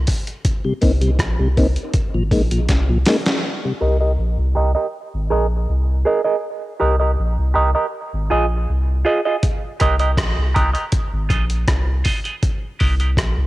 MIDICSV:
0, 0, Header, 1, 5, 480
1, 0, Start_track
1, 0, Key_signature, -3, "minor"
1, 0, Tempo, 748130
1, 289, Time_signature, 4, 2, 24, 8
1, 8641, End_track
2, 0, Start_track
2, 0, Title_t, "Clean electric guitar"
2, 0, Program_c, 0, 27
2, 2443, Note_on_c, 0, 67, 73
2, 2446, Note_on_c, 0, 70, 89
2, 2451, Note_on_c, 0, 75, 83
2, 2537, Note_off_c, 0, 67, 0
2, 2539, Note_off_c, 0, 70, 0
2, 2541, Note_off_c, 0, 75, 0
2, 2570, Note_on_c, 0, 75, 61
2, 2572, Note_on_c, 0, 70, 57
2, 2578, Note_on_c, 0, 67, 48
2, 2636, Note_off_c, 0, 75, 0
2, 2638, Note_off_c, 0, 70, 0
2, 2640, Note_off_c, 0, 67, 0
2, 2920, Note_on_c, 0, 67, 74
2, 2924, Note_on_c, 0, 70, 72
2, 2929, Note_on_c, 0, 75, 79
2, 3015, Note_off_c, 0, 67, 0
2, 3017, Note_off_c, 0, 70, 0
2, 3020, Note_off_c, 0, 75, 0
2, 3046, Note_on_c, 0, 75, 65
2, 3051, Note_on_c, 0, 70, 53
2, 3056, Note_on_c, 0, 67, 56
2, 3114, Note_off_c, 0, 75, 0
2, 3117, Note_off_c, 0, 70, 0
2, 3119, Note_off_c, 0, 67, 0
2, 3403, Note_on_c, 0, 68, 83
2, 3407, Note_on_c, 0, 70, 89
2, 3412, Note_on_c, 0, 75, 83
2, 3497, Note_off_c, 0, 68, 0
2, 3499, Note_off_c, 0, 70, 0
2, 3502, Note_off_c, 0, 75, 0
2, 3883, Note_on_c, 0, 68, 76
2, 3888, Note_on_c, 0, 70, 85
2, 3891, Note_on_c, 0, 75, 89
2, 3977, Note_off_c, 0, 68, 0
2, 3980, Note_off_c, 0, 70, 0
2, 3981, Note_off_c, 0, 75, 0
2, 4006, Note_on_c, 0, 75, 70
2, 4011, Note_on_c, 0, 70, 61
2, 4016, Note_on_c, 0, 68, 54
2, 4074, Note_off_c, 0, 75, 0
2, 4077, Note_off_c, 0, 70, 0
2, 4079, Note_off_c, 0, 68, 0
2, 4361, Note_on_c, 0, 67, 80
2, 4365, Note_on_c, 0, 70, 91
2, 4369, Note_on_c, 0, 75, 84
2, 4456, Note_off_c, 0, 67, 0
2, 4458, Note_off_c, 0, 70, 0
2, 4460, Note_off_c, 0, 75, 0
2, 4489, Note_on_c, 0, 75, 53
2, 4496, Note_on_c, 0, 70, 57
2, 4500, Note_on_c, 0, 67, 42
2, 4556, Note_off_c, 0, 75, 0
2, 4559, Note_off_c, 0, 70, 0
2, 4561, Note_off_c, 0, 67, 0
2, 4837, Note_on_c, 0, 67, 65
2, 4842, Note_on_c, 0, 70, 74
2, 4847, Note_on_c, 0, 75, 78
2, 4934, Note_off_c, 0, 67, 0
2, 4937, Note_off_c, 0, 70, 0
2, 4939, Note_off_c, 0, 75, 0
2, 4971, Note_on_c, 0, 75, 61
2, 4974, Note_on_c, 0, 70, 60
2, 4978, Note_on_c, 0, 67, 50
2, 5037, Note_off_c, 0, 75, 0
2, 5039, Note_off_c, 0, 70, 0
2, 5041, Note_off_c, 0, 67, 0
2, 5325, Note_on_c, 0, 65, 71
2, 5330, Note_on_c, 0, 68, 81
2, 5334, Note_on_c, 0, 75, 85
2, 5418, Note_off_c, 0, 65, 0
2, 5421, Note_off_c, 0, 68, 0
2, 5423, Note_off_c, 0, 75, 0
2, 5805, Note_on_c, 0, 65, 79
2, 5809, Note_on_c, 0, 68, 87
2, 5814, Note_on_c, 0, 75, 89
2, 5898, Note_off_c, 0, 65, 0
2, 5900, Note_off_c, 0, 68, 0
2, 5903, Note_off_c, 0, 75, 0
2, 5937, Note_on_c, 0, 75, 64
2, 5941, Note_on_c, 0, 68, 60
2, 5945, Note_on_c, 0, 65, 56
2, 6000, Note_off_c, 0, 75, 0
2, 6002, Note_off_c, 0, 68, 0
2, 6004, Note_off_c, 0, 65, 0
2, 6286, Note_on_c, 0, 67, 85
2, 6292, Note_on_c, 0, 70, 81
2, 6297, Note_on_c, 0, 75, 90
2, 6379, Note_off_c, 0, 67, 0
2, 6382, Note_off_c, 0, 70, 0
2, 6384, Note_off_c, 0, 75, 0
2, 6414, Note_on_c, 0, 75, 58
2, 6419, Note_on_c, 0, 70, 50
2, 6424, Note_on_c, 0, 67, 50
2, 6479, Note_off_c, 0, 75, 0
2, 6481, Note_off_c, 0, 70, 0
2, 6484, Note_off_c, 0, 67, 0
2, 6765, Note_on_c, 0, 67, 75
2, 6768, Note_on_c, 0, 70, 86
2, 6773, Note_on_c, 0, 75, 74
2, 6859, Note_off_c, 0, 67, 0
2, 6860, Note_off_c, 0, 70, 0
2, 6863, Note_off_c, 0, 75, 0
2, 6887, Note_on_c, 0, 75, 68
2, 6891, Note_on_c, 0, 70, 63
2, 6898, Note_on_c, 0, 67, 50
2, 6956, Note_off_c, 0, 75, 0
2, 6958, Note_off_c, 0, 70, 0
2, 6961, Note_off_c, 0, 67, 0
2, 7243, Note_on_c, 0, 65, 75
2, 7248, Note_on_c, 0, 68, 75
2, 7253, Note_on_c, 0, 75, 79
2, 7338, Note_off_c, 0, 65, 0
2, 7341, Note_off_c, 0, 68, 0
2, 7343, Note_off_c, 0, 75, 0
2, 7725, Note_on_c, 0, 65, 75
2, 7729, Note_on_c, 0, 68, 83
2, 7734, Note_on_c, 0, 75, 87
2, 7819, Note_off_c, 0, 65, 0
2, 7822, Note_off_c, 0, 68, 0
2, 7824, Note_off_c, 0, 75, 0
2, 7854, Note_on_c, 0, 75, 69
2, 7860, Note_on_c, 0, 68, 62
2, 7864, Note_on_c, 0, 65, 51
2, 7920, Note_off_c, 0, 75, 0
2, 7923, Note_off_c, 0, 68, 0
2, 7925, Note_off_c, 0, 65, 0
2, 8208, Note_on_c, 0, 67, 76
2, 8211, Note_on_c, 0, 70, 92
2, 8214, Note_on_c, 0, 75, 91
2, 8301, Note_off_c, 0, 67, 0
2, 8303, Note_off_c, 0, 70, 0
2, 8304, Note_off_c, 0, 75, 0
2, 8340, Note_on_c, 0, 75, 65
2, 8344, Note_on_c, 0, 70, 63
2, 8347, Note_on_c, 0, 67, 49
2, 8403, Note_off_c, 0, 75, 0
2, 8405, Note_off_c, 0, 70, 0
2, 8406, Note_off_c, 0, 67, 0
2, 8641, End_track
3, 0, Start_track
3, 0, Title_t, "Tonewheel organ"
3, 0, Program_c, 1, 16
3, 414, Note_on_c, 1, 55, 54
3, 415, Note_on_c, 1, 48, 60
3, 472, Note_off_c, 1, 48, 0
3, 472, Note_off_c, 1, 55, 0
3, 522, Note_on_c, 1, 58, 71
3, 525, Note_on_c, 1, 60, 65
3, 527, Note_on_c, 1, 63, 81
3, 588, Note_off_c, 1, 58, 0
3, 590, Note_off_c, 1, 60, 0
3, 591, Note_off_c, 1, 63, 0
3, 649, Note_on_c, 1, 48, 60
3, 649, Note_on_c, 1, 55, 53
3, 709, Note_off_c, 1, 48, 0
3, 709, Note_off_c, 1, 55, 0
3, 894, Note_on_c, 1, 55, 53
3, 895, Note_on_c, 1, 48, 55
3, 951, Note_off_c, 1, 48, 0
3, 951, Note_off_c, 1, 55, 0
3, 1008, Note_on_c, 1, 58, 73
3, 1012, Note_on_c, 1, 60, 62
3, 1014, Note_on_c, 1, 63, 77
3, 1071, Note_off_c, 1, 58, 0
3, 1073, Note_off_c, 1, 60, 0
3, 1074, Note_off_c, 1, 63, 0
3, 1376, Note_on_c, 1, 46, 57
3, 1376, Note_on_c, 1, 53, 54
3, 1432, Note_off_c, 1, 46, 0
3, 1432, Note_off_c, 1, 53, 0
3, 1486, Note_on_c, 1, 56, 73
3, 1490, Note_on_c, 1, 58, 68
3, 1493, Note_on_c, 1, 63, 79
3, 1550, Note_off_c, 1, 56, 0
3, 1552, Note_off_c, 1, 58, 0
3, 1554, Note_off_c, 1, 63, 0
3, 1614, Note_on_c, 1, 46, 58
3, 1614, Note_on_c, 1, 53, 54
3, 1671, Note_off_c, 1, 46, 0
3, 1671, Note_off_c, 1, 53, 0
3, 1856, Note_on_c, 1, 46, 56
3, 1857, Note_on_c, 1, 53, 52
3, 1912, Note_off_c, 1, 46, 0
3, 1912, Note_off_c, 1, 53, 0
3, 1970, Note_on_c, 1, 56, 75
3, 1970, Note_on_c, 1, 58, 69
3, 1973, Note_on_c, 1, 63, 78
3, 2032, Note_off_c, 1, 56, 0
3, 2032, Note_off_c, 1, 58, 0
3, 2033, Note_off_c, 1, 63, 0
3, 2340, Note_on_c, 1, 55, 55
3, 2341, Note_on_c, 1, 48, 56
3, 2394, Note_off_c, 1, 48, 0
3, 2394, Note_off_c, 1, 55, 0
3, 8641, End_track
4, 0, Start_track
4, 0, Title_t, "Sub bass"
4, 0, Program_c, 2, 38
4, 535, Note_on_c, 2, 36, 103
4, 758, Note_off_c, 2, 36, 0
4, 767, Note_on_c, 2, 34, 95
4, 887, Note_off_c, 2, 34, 0
4, 896, Note_on_c, 2, 36, 83
4, 1003, Note_off_c, 2, 36, 0
4, 1013, Note_on_c, 2, 36, 86
4, 1130, Note_off_c, 2, 36, 0
4, 1374, Note_on_c, 2, 32, 93
4, 1481, Note_off_c, 2, 32, 0
4, 1487, Note_on_c, 2, 34, 96
4, 1714, Note_off_c, 2, 34, 0
4, 1729, Note_on_c, 2, 36, 87
4, 1955, Note_off_c, 2, 36, 0
4, 2448, Note_on_c, 2, 36, 97
4, 2674, Note_off_c, 2, 36, 0
4, 2685, Note_on_c, 2, 34, 95
4, 2806, Note_off_c, 2, 34, 0
4, 2810, Note_on_c, 2, 36, 86
4, 2919, Note_off_c, 2, 36, 0
4, 2928, Note_on_c, 2, 36, 91
4, 3047, Note_off_c, 2, 36, 0
4, 3298, Note_on_c, 2, 32, 84
4, 3403, Note_off_c, 2, 32, 0
4, 3409, Note_on_c, 2, 34, 97
4, 3635, Note_off_c, 2, 34, 0
4, 3653, Note_on_c, 2, 36, 89
4, 3877, Note_off_c, 2, 36, 0
4, 4372, Note_on_c, 2, 36, 91
4, 4596, Note_off_c, 2, 36, 0
4, 4614, Note_on_c, 2, 34, 98
4, 4730, Note_off_c, 2, 34, 0
4, 4738, Note_on_c, 2, 36, 80
4, 4843, Note_off_c, 2, 36, 0
4, 4851, Note_on_c, 2, 36, 93
4, 4969, Note_off_c, 2, 36, 0
4, 5217, Note_on_c, 2, 32, 93
4, 5323, Note_off_c, 2, 32, 0
4, 5334, Note_on_c, 2, 34, 93
4, 5558, Note_off_c, 2, 34, 0
4, 5577, Note_on_c, 2, 36, 81
4, 5799, Note_off_c, 2, 36, 0
4, 6297, Note_on_c, 2, 36, 95
4, 6520, Note_off_c, 2, 36, 0
4, 6531, Note_on_c, 2, 34, 89
4, 6649, Note_off_c, 2, 34, 0
4, 6660, Note_on_c, 2, 36, 82
4, 6765, Note_off_c, 2, 36, 0
4, 6779, Note_on_c, 2, 36, 90
4, 6894, Note_off_c, 2, 36, 0
4, 7140, Note_on_c, 2, 32, 99
4, 7245, Note_off_c, 2, 32, 0
4, 7252, Note_on_c, 2, 34, 103
4, 7478, Note_off_c, 2, 34, 0
4, 7494, Note_on_c, 2, 36, 82
4, 7719, Note_off_c, 2, 36, 0
4, 8220, Note_on_c, 2, 36, 102
4, 8442, Note_off_c, 2, 36, 0
4, 8454, Note_on_c, 2, 34, 94
4, 8572, Note_off_c, 2, 34, 0
4, 8582, Note_on_c, 2, 36, 82
4, 8641, Note_off_c, 2, 36, 0
4, 8641, End_track
5, 0, Start_track
5, 0, Title_t, "Drums"
5, 45, Note_on_c, 9, 46, 81
5, 51, Note_on_c, 9, 36, 85
5, 110, Note_off_c, 9, 46, 0
5, 115, Note_off_c, 9, 36, 0
5, 175, Note_on_c, 9, 42, 50
5, 239, Note_off_c, 9, 42, 0
5, 287, Note_on_c, 9, 42, 91
5, 288, Note_on_c, 9, 36, 115
5, 352, Note_off_c, 9, 36, 0
5, 352, Note_off_c, 9, 42, 0
5, 524, Note_on_c, 9, 46, 48
5, 532, Note_on_c, 9, 36, 84
5, 588, Note_off_c, 9, 46, 0
5, 596, Note_off_c, 9, 36, 0
5, 651, Note_on_c, 9, 42, 50
5, 715, Note_off_c, 9, 42, 0
5, 763, Note_on_c, 9, 36, 103
5, 766, Note_on_c, 9, 42, 76
5, 770, Note_on_c, 9, 37, 106
5, 827, Note_off_c, 9, 36, 0
5, 830, Note_off_c, 9, 42, 0
5, 834, Note_off_c, 9, 37, 0
5, 1010, Note_on_c, 9, 46, 53
5, 1011, Note_on_c, 9, 36, 87
5, 1074, Note_off_c, 9, 46, 0
5, 1076, Note_off_c, 9, 36, 0
5, 1131, Note_on_c, 9, 42, 51
5, 1195, Note_off_c, 9, 42, 0
5, 1242, Note_on_c, 9, 42, 80
5, 1245, Note_on_c, 9, 36, 119
5, 1306, Note_off_c, 9, 42, 0
5, 1309, Note_off_c, 9, 36, 0
5, 1484, Note_on_c, 9, 36, 94
5, 1486, Note_on_c, 9, 46, 48
5, 1548, Note_off_c, 9, 36, 0
5, 1550, Note_off_c, 9, 46, 0
5, 1612, Note_on_c, 9, 42, 65
5, 1676, Note_off_c, 9, 42, 0
5, 1723, Note_on_c, 9, 42, 77
5, 1725, Note_on_c, 9, 36, 97
5, 1725, Note_on_c, 9, 38, 56
5, 1787, Note_off_c, 9, 42, 0
5, 1789, Note_off_c, 9, 36, 0
5, 1789, Note_off_c, 9, 38, 0
5, 1960, Note_on_c, 9, 46, 77
5, 1967, Note_on_c, 9, 38, 89
5, 2025, Note_off_c, 9, 46, 0
5, 2031, Note_off_c, 9, 38, 0
5, 2090, Note_on_c, 9, 42, 51
5, 2095, Note_on_c, 9, 38, 92
5, 2154, Note_off_c, 9, 42, 0
5, 2159, Note_off_c, 9, 38, 0
5, 6049, Note_on_c, 9, 42, 83
5, 6051, Note_on_c, 9, 36, 111
5, 6113, Note_off_c, 9, 42, 0
5, 6115, Note_off_c, 9, 36, 0
5, 6288, Note_on_c, 9, 42, 67
5, 6295, Note_on_c, 9, 36, 79
5, 6352, Note_off_c, 9, 42, 0
5, 6359, Note_off_c, 9, 36, 0
5, 6412, Note_on_c, 9, 42, 44
5, 6476, Note_off_c, 9, 42, 0
5, 6528, Note_on_c, 9, 36, 104
5, 6530, Note_on_c, 9, 42, 74
5, 6533, Note_on_c, 9, 37, 106
5, 6592, Note_off_c, 9, 36, 0
5, 6594, Note_off_c, 9, 42, 0
5, 6598, Note_off_c, 9, 37, 0
5, 6775, Note_on_c, 9, 42, 51
5, 6776, Note_on_c, 9, 36, 85
5, 6839, Note_off_c, 9, 42, 0
5, 6840, Note_off_c, 9, 36, 0
5, 6895, Note_on_c, 9, 42, 47
5, 6960, Note_off_c, 9, 42, 0
5, 7006, Note_on_c, 9, 42, 85
5, 7010, Note_on_c, 9, 36, 111
5, 7070, Note_off_c, 9, 42, 0
5, 7074, Note_off_c, 9, 36, 0
5, 7250, Note_on_c, 9, 36, 92
5, 7252, Note_on_c, 9, 42, 66
5, 7314, Note_off_c, 9, 36, 0
5, 7316, Note_off_c, 9, 42, 0
5, 7377, Note_on_c, 9, 42, 61
5, 7441, Note_off_c, 9, 42, 0
5, 7491, Note_on_c, 9, 42, 75
5, 7492, Note_on_c, 9, 36, 98
5, 7495, Note_on_c, 9, 37, 108
5, 7556, Note_off_c, 9, 36, 0
5, 7556, Note_off_c, 9, 42, 0
5, 7559, Note_off_c, 9, 37, 0
5, 7729, Note_on_c, 9, 46, 75
5, 7735, Note_on_c, 9, 36, 84
5, 7794, Note_off_c, 9, 46, 0
5, 7799, Note_off_c, 9, 36, 0
5, 7861, Note_on_c, 9, 42, 48
5, 7925, Note_off_c, 9, 42, 0
5, 7973, Note_on_c, 9, 42, 80
5, 7974, Note_on_c, 9, 36, 110
5, 8037, Note_off_c, 9, 42, 0
5, 8038, Note_off_c, 9, 36, 0
5, 8213, Note_on_c, 9, 46, 49
5, 8218, Note_on_c, 9, 36, 81
5, 8277, Note_off_c, 9, 46, 0
5, 8282, Note_off_c, 9, 36, 0
5, 8340, Note_on_c, 9, 42, 45
5, 8404, Note_off_c, 9, 42, 0
5, 8451, Note_on_c, 9, 36, 107
5, 8456, Note_on_c, 9, 42, 78
5, 8459, Note_on_c, 9, 37, 97
5, 8515, Note_off_c, 9, 36, 0
5, 8520, Note_off_c, 9, 42, 0
5, 8524, Note_off_c, 9, 37, 0
5, 8641, End_track
0, 0, End_of_file